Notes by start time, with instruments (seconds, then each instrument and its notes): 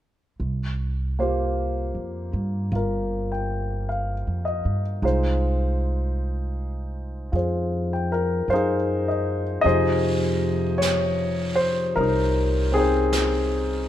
0.40 upright bass C2
1.19 upright piano A#3 F4 G4 C5
1.95 upright bass F2
2.33 upright bass G2
2.72 upright bass G1, upright piano F4
2.76 upright piano A#4
3.32 upright piano G5
3.89 upright piano F5
4.27 upright bass F2
4.45 upright piano D#5
4.65 upright bass G2
5.02 upright bass C2, upright piano G#3 D#4 F4 C5
7.32 upright bass F2, upright piano F4 G#4 C5
7.93 upright piano G5
8.12 upright piano A#4
8.48 upright bass F#2, upright piano C5 F5
8.54 upright piano D#4 G#4
9.08 upright piano D#5
9.61 upright bass F2, upright piano C3 F3 D#4 D#5
9.66 upright piano G#4 C5, brush sweep
10.78 upright piano C#5, brush sweep, snare, hi-hat pedal
11.55 upright piano C5
11.96 upright bass C2, upright piano A#4, brush sweep
12.00 upright piano D#4
12.72 upright piano C4 G#4 G5
12.77 upright piano C4 D#4
13.13 brush sweep, snare, hi-hat pedal